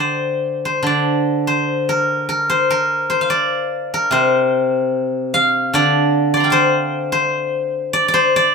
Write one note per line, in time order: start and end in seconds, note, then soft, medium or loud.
0.00 0.81 D3 soft
0.00 0.65 C5 medium
0.00 0.86 D5 soft
0.00 0.76 F5 soft
0.00 0.62 G5 soft
0.00 0.43 A#5 soft
0.00 0.31 C6 soft
0.65 1.47 C5 soft
0.83 3.29 D3 soft
0.83 2.71 D5 medium
1.47 2.49 C5 medium
1.89 2.28 A#4 medium
2.29 2.70 A#4 medium
2.50 3.09 C5 medium
2.70 3.93 A#4 medium
3.10 4.12 C5 medium
3.21 4.88 F5 soft
3.30 5.14 D5 medium
3.94 6.06 A#4 medium
4.11 5.73 C3 soft
4.11 6.10 C5 medium
5.34 6.44 F5 medium
5.74 8.14 D3 soft
5.74 6.33 D5 medium
6.34 6.50 D5 medium
6.34 7.67 C6 soft
6.40 7.99 G5 soft
6.40 7.80 A#5 soft
6.44 8.11 F5 soft
6.50 7.12 C5 medium
6.50 7.93 D5 soft
7.12 8.13 C5 medium
7.93 8.08 D5 medium
8.08 8.36 D5 medium
8.14 8.55 C5 medium
8.36 8.55 D5 medium